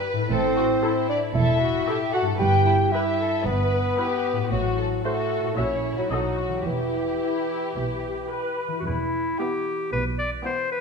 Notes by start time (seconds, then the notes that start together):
Already playing: G2 E4 G4 B4
0.13 A2
0.17 E4
0.22 A4
0.30 A1 A2 C4 A4 C5
0.56 F#4
0.83 E4 A4
1.09 D4 D5
1.35 E1 E2 E4 A4 E5
1.61 F#4
1.87 E4 G4 A4
2.13 F#4 A4 F#5
2.21 G2
2.26 E4
2.30 G4
2.35 B4
2.39 G1 G2 G4 B4 G5
2.66 E4
2.92 E4 G4 B4 E5
3.18 A4
3.44 G1 G2 B3 B4
3.98 E4 G4 B4
4.33 A2
4.37 F#4
4.42 C5
4.50 A1 A2 F#3 F#4
4.77 A4
5.04 A3 F#4 A4 C5
5.39 A#2
5.44 E4
5.48 F#4
5.53 A#2 E4 C#5
5.57 A#1 C#4 F#4 C#5 E5
5.93 B2
5.97 F#3 D#4 F#4
6.02 A4
6.06 B2 D#4 F#4 C5
6.11 B1 F#3 A4 D#5
6.38 F#4
6.48 E3
6.52 E4
6.57 G4
6.62 E2 E4 G4 B4
6.66 E1 E3
7.21 E4
7.75 B1 B2 G4
8.31 B4
8.68 E3
8.72 E4
8.77 F#4 G4
8.81 E2 B4
8.85 E1 E4
9.39 B3 E4 G4 G5
9.92 B1 B2 B4
10.18 D5
10.45 B3 E4 C5 G5
10.71 B4